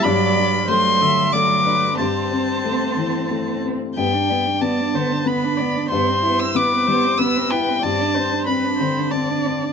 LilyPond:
<<
  \new Staff \with { instrumentName = "Violin" } { \time 3/4 \key d \mixolydian \tempo 4 = 93 b''4 c'''4 d'''4 | a''2~ a''8 r8 | g''4 a''4 b''4 | c'''8. e'''16 d'''4 e'''8 g''8 |
a''4 b''4 a''4 | }
  \new Staff \with { instrumentName = "Viola" } { \time 3/4 \key d \mixolydian d''4 c''8 e''8 d''8 b'8 | c''2~ c''8 r8 | r4 d''8 c''8 b'8 d''8 | c''4 b'8 c''8 b'4 |
d''8 c''8 b'8 c''8 d''4 | }
  \new Staff \with { instrumentName = "Cello" } { \time 3/4 \key d \mixolydian fis4 fis4 fis4 | c'2~ c'8. r16 | b16 d'16 b16 d'16 b16 d'16 b16 d'16 b16 d'16 b16 d'16 | b16 c'16 b16 c'16 b16 c'16 b16 c'16 b16 c'16 b16 c'16 |
c'16 d'16 c'16 d'16 c'16 d'16 c'16 d'16 c'16 d'16 c'16 d'16 | }
  \new Staff \with { instrumentName = "Upright piano" } { \time 3/4 \key d \mixolydian g,8 d'8 a8 d8 a8 d'8 | g,8 c'8 a8 e8 a8 c'8 | g,8 d'8 b8 d8 b8 d'8 | g,8 e'8 b8 g8 b8 e'8 |
g,8 d'8 c'8 d8 c'8 d'8 | }
>>